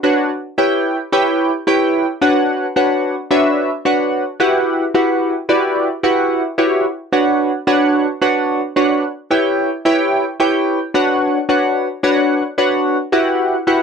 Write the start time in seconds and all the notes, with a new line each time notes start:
0.03 D4 F#4 B4 C#5 F#5
0.58 E4 G4 B4 C#5 G5
1.12 E4 G4 B4 C#5 G5
1.67 E4 G4 B4 C#5 G5
2.21 D4 F#4 B4 C#5 F#5
2.76 D4 F#4 B4 C#5 F#5
3.31 D4 F#4 B4 C#5 E5
3.85 D4 F#4 B4 C#5 F#5
4.40 E4 F#4 G4 B4 F#5
4.94 E4 F#4 G4 B4 F#5
5.49 E4 F#4 G4 B4 D5
6.03 E4 F#4 G4 B4 F#5
6.58 E4 F#4 G4 B4 C#5
7.12 D4 F#4 B4 C#5 F#5
7.67 D4 F#4 B4 C#5 F#5
8.22 D4 F#4 B4 C#5 F#5
8.76 D4 F#4 B4 C#5 F#5
9.31 E4 G4 B4 C#5 G5
9.85 E4 G4 B4 C#5 G5
10.40 E4 G4 B4 C#5 G5
10.94 D4 F#4 B4 C#5 F#5
11.49 D4 F#4 B4 C#5 F#5
12.03 D4 F#4 B4 C#5 F#5
12.58 D4 F#4 B4 C#5 F#5
13.12 E4 F#4 G4 B4 F#5
13.67 E4 F#4 G4 B4 F#5